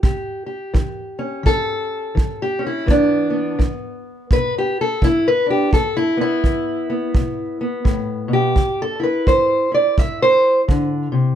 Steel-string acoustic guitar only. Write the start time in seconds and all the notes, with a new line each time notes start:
0.03 A#2 G4
0.46 G4
0.74 E3
1.19 C#4
1.43 E3 A4
2.15 E3
2.42 G4
2.59 C#4
2.66 E4
2.86 E2 E3 B3
2.91 D4
3.30 B3
3.59 E3
4.31 B2 B4
4.58 G4
4.81 A4
5.02 E3 E4
5.28 B4
5.46 D4
5.50 G4
5.74 E2 A4
5.97 E4
6.17 B3
6.21 E4
6.45 E3
6.90 B3
7.16 B2
7.61 B3
7.84 A2
8.28 B2
8.33 G4
8.55 C3
8.82 A4
9.00 E4 B4
9.27 E3 C5
9.72 E4 D5
9.98 G3 E5
10.22 C5
10.68 D3
11.12 C3